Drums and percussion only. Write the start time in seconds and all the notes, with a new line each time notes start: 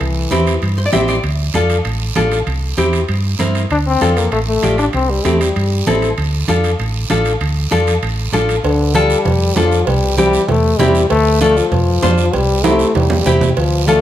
0.00 high conga, high timbale, long guiro
0.31 high conga, high timbale, short guiro
0.47 high timbale, short guiro
0.62 high conga, high timbale, long guiro
0.93 high conga, high timbale, low timbale, short guiro
1.08 high timbale, short guiro
1.23 high conga, high timbale, long guiro
1.54 high conga, high timbale, short guiro
1.70 high timbale, short guiro
1.85 high conga, high timbale, long guiro
2.16 high conga, high timbale, low timbale, short guiro
2.32 high timbale, short guiro
2.47 high conga, high timbale, long guiro
2.78 high conga, high timbale, short guiro
2.93 high timbale, short guiro
3.08 high conga, high timbale, long guiro
3.39 high conga, high timbale, short guiro
3.55 high timbale, short guiro
3.70 high conga, high timbale, long guiro
4.01 high conga, high timbale, short guiro
4.17 high timbale, short guiro
4.32 high conga, high timbale, long guiro
4.63 high conga, high timbale, short guiro
4.78 high timbale, short guiro
4.93 high conga, high timbale, long guiro
5.25 high conga, high timbale, short guiro
5.41 high timbale, short guiro
5.56 high conga, high timbale, long guiro
5.87 high conga, high timbale, low timbale, short guiro
6.02 high timbale, short guiro
6.18 high conga, high timbale, long guiro
6.48 high conga, high timbale, short guiro
6.64 high timbale, short guiro
6.79 high conga, high timbale, long guiro
7.10 high conga, high timbale, short guiro
7.25 high timbale, short guiro
7.41 high conga, high timbale, long guiro
7.71 high conga, high timbale, short guiro
7.87 high timbale, short guiro
8.02 high conga, high timbale, long guiro
8.33 high conga, high timbale, short guiro
8.49 high timbale, short guiro
8.64 cowbell, high conga, long guiro
8.95 cowbell, high conga, short guiro
9.10 short guiro
9.25 cowbell, high conga, low conga, long guiro
9.56 cowbell, high conga, low timbale, short guiro
9.72 short guiro
9.87 cowbell, high conga, low conga, long guiro
10.18 cowbell, high conga, short guiro
10.33 short guiro
10.49 cowbell, high conga, low conga, long guiro
10.79 cowbell, high conga, low conga, low timbale, short guiro
10.95 short guiro
11.10 cowbell, high conga, long guiro
11.41 cowbell, high conga, short guiro
11.57 short guiro
11.72 cowbell, high conga, low conga, long guiro
12.03 cowbell, high conga, low timbale, short guiro
12.18 short guiro
12.33 cowbell, high conga, low conga, long guiro
12.64 cowbell, high conga, high timbale, short guiro
12.79 short guiro
12.95 cowbell, high conga, low conga, high timbale, long guiro
13.10 high conga, low timbale
13.26 cowbell, low conga, short guiro
13.41 low conga, low timbale, short guiro
13.57 cowbell, high conga, long guiro
13.87 cowbell, high conga, short guiro